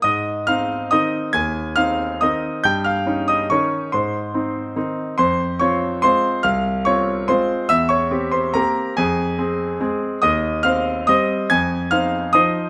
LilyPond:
\new Staff \with { instrumentName = "Grand piano" } { \time 3/4 \key aes \major \tempo 4 = 141 << { <ees'' ees'''>4 <f'' f'''>4 <ees'' ees'''>4 | <aes'' aes'''>4 <f'' f'''>4 <ees'' ees'''>4 | <g'' g'''>8 <f'' f'''>4 <ees'' ees'''>8 <des'' des'''>4 | <c'' c'''>2~ <c'' c'''>8 r8 |
<c'' c'''>4 <des'' des'''>4 <c'' c'''>4 | <f'' f'''>4 <des'' des'''>4 <c'' c'''>4 | <e'' e'''>8 <des'' des'''>4 <c'' c'''>8 <bes' bes''>4 | <aes' aes''>2~ <aes' aes''>8 r8 |
<ees'' ees'''>4 <f'' f'''>4 <ees'' ees'''>4 | <aes'' aes'''>4 <f'' f'''>4 <ees'' ees'''>4 | } \\ { aes,4 <c' ees'>4 <ees c' ees'>4 | ees,4 <c' ees'>4 <ees c' ees'>4 | g,4 <des' ees'>4 <ees des' ees'>4 | aes,4 <c' ees'>4 <ees c' ees'>4 |
f,4 <c' f'>4 <aes c' f'>4 | c,4 <c' f'>4 <aes c' f'>4 | e,4 <c' g'>4 <bes c' g'>4 | f,4 <c' aes'>4 <aes c' aes'>4 |
ees,4 <c' c''>4 <g c' c''>4 | f,4 <ees' c''>4 <f ees' c''>4 | } >> }